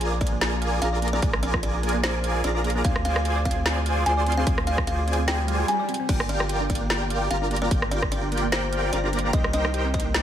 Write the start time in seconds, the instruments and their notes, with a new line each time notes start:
Already playing: sub bass A#1, supersaw synth F4 G#4 A#4 D5 G#5
0.01 synth arpeggio sound G#4, closed hi-hat
0.12 synth arpeggio sound D5
0.21 synth arpeggio sound A#3, kalimba D5, kick, closed hi-hat
0.27 closed hi-hat
0.32 synth arpeggio sound A#3
0.41 synth arpeggio sound A#3, snare, closed hi-hat
0.62 synth arpeggio sound F5, closed hi-hat
0.73 synth arpeggio sound F4
0.82 sub bass A#1, supersaw synth F4 G#4 A#4 D5 A#5, synth arpeggio sound G#4, kalimba F5, closed hi-hat
0.93 synth arpeggio sound D5
1.02 synth arpeggio sound A#3, closed hi-hat
1.08 closed hi-hat
1.13 synth arpeggio sound A#3, kalimba D5
1.22 sub bass A#1, synth arpeggio sound A#3, supersaw synth F4 G#4 A#4 D5 G#5, kick, closed hi-hat
1.33 cross-stick
1.43 kalimba D5, synth arpeggio sound F5, closed hi-hat
1.54 synth arpeggio sound F4, kick, cross-stick
1.63 synth arpeggio sound G#4, kalimba D5, closed hi-hat
1.74 synth arpeggio sound D5
1.83 synth arpeggio sound A#3, closed hi-hat
1.89 closed hi-hat
1.94 synth arpeggio sound A#3
2.03 synth arpeggio sound A#3, kalimba C5, snare, closed hi-hat
2.24 synth arpeggio sound F5, closed hi-hat
2.35 synth arpeggio sound F4
2.44 sub bass A#1, supersaw synth F4 G#4 A#4 D5 A#5, synth arpeggio sound G#4, kalimba D5, closed hi-hat
2.55 synth arpeggio sound D5
2.64 synth arpeggio sound A#3, closed hi-hat
2.70 closed hi-hat
2.75 synth arpeggio sound A#3
2.84 sub bass D2, synth arpeggio sound C4, supersaw synth F4 G#4 C5 D5 G#5, kalimba F5, kick, closed hi-hat
2.96 cross-stick
3.05 synth arpeggio sound F5, kalimba F5, closed hi-hat
3.16 synth arpeggio sound F4, cross-stick
3.25 synth arpeggio sound G#4, closed hi-hat
3.36 synth arpeggio sound D5
3.45 synth arpeggio sound C4, kalimba F5, kick, closed hi-hat
3.51 closed hi-hat
3.56 synth arpeggio sound C4
3.66 synth arpeggio sound C4, snare, closed hi-hat
3.86 synth arpeggio sound F5, closed hi-hat
3.97 synth arpeggio sound F4
4.06 sub bass D2, supersaw synth F4 G#4 C5 D5 C6, synth arpeggio sound G#4, kalimba G#5, closed hi-hat
4.17 synth arpeggio sound D5
4.26 synth arpeggio sound C4, closed hi-hat
4.32 closed hi-hat
4.37 synth arpeggio sound C4, kalimba F5
4.47 sub bass D2, supersaw synth F4 G#4 C5 D5 G#5, kick, closed hi-hat
4.58 cross-stick
4.67 kalimba F5, synth arpeggio sound F5, closed hi-hat
4.78 synth arpeggio sound F4, kick, cross-stick
4.87 synth arpeggio sound G#4, kalimba F5, closed hi-hat
4.98 synth arpeggio sound D5
5.08 synth arpeggio sound C4, closed hi-hat
5.13 closed hi-hat
5.19 synth arpeggio sound C4
5.28 synth arpeggio sound C4, kalimba G5, snare, closed hi-hat, swell
5.48 synth arpeggio sound F5, closed hi-hat
5.59 synth arpeggio sound F4
5.68 synth arpeggio sound G#4, kalimba G#5, closed hi-hat
5.79 synth arpeggio sound D5
5.89 synth arpeggio sound C4, closed hi-hat
5.94 closed hi-hat
6.00 synth arpeggio sound C4
6.09 sub bass G1, synth arpeggio sound A#3, supersaw synth F4 G4 A#4 D5 G5, kalimba D5, kick, closed hi-hat, crash
6.20 cross-stick
6.29 kalimba D5, synth arpeggio sound F5, closed hi-hat
6.40 synth arpeggio sound F4, cross-stick
6.49 synth arpeggio sound G4, closed hi-hat
6.61 synth arpeggio sound D4
6.70 synth arpeggio sound A#3, kalimba D5, kick, closed hi-hat
6.75 closed hi-hat
6.81 synth arpeggio sound A#3
6.90 synth arpeggio sound A#3, snare, closed hi-hat
7.10 synth arpeggio sound F5, closed hi-hat
7.21 synth arpeggio sound F4
7.31 sub bass G1, supersaw synth F4 G4 A#4 D5 A#5, synth arpeggio sound G4, kalimba F5, closed hi-hat
7.42 synth arpeggio sound D4
7.51 synth arpeggio sound A#3, closed hi-hat
7.56 closed hi-hat
7.62 synth arpeggio sound A#3, kalimba D5
7.71 sub bass G1, synth arpeggio sound A#3, supersaw synth F4 G4 A#4 D5 G5, kick, closed hi-hat
7.82 cross-stick
7.91 kalimba D5, synth arpeggio sound F5, closed hi-hat
8.02 synth arpeggio sound F4, kick, cross-stick
8.12 synth arpeggio sound G4, kalimba D5, closed hi-hat
8.23 synth arpeggio sound D4
8.32 synth arpeggio sound A#3, closed hi-hat
8.38 closed hi-hat
8.43 synth arpeggio sound A#3
8.52 synth arpeggio sound A#3, kalimba C5, snare, closed hi-hat
8.72 synth arpeggio sound F5, closed hi-hat
8.84 synth arpeggio sound F4
8.93 sub bass G1, supersaw synth F4 G4 A#4 D5 A#5, synth arpeggio sound G4, kalimba D5, closed hi-hat
9.04 synth arpeggio sound D4
9.13 synth arpeggio sound A#3, closed hi-hat
9.19 closed hi-hat
9.24 synth arpeggio sound A#3
9.33 sub bass C2, supersaw synth D#4 G4 A#4 C5 G5, kalimba D#5, kick, closed hi-hat
9.44 cross-stick
9.53 kalimba D#5, synth arpeggio sound D#5, closed hi-hat
9.65 synth arpeggio sound D#4, cross-stick
9.74 synth arpeggio sound G4, closed hi-hat
9.85 synth arpeggio sound C4
9.94 synth arpeggio sound A#3, kalimba D#5, kick, closed hi-hat
10.00 closed hi-hat
10.05 synth arpeggio sound A#3
10.14 synth arpeggio sound A#3, snare, closed hi-hat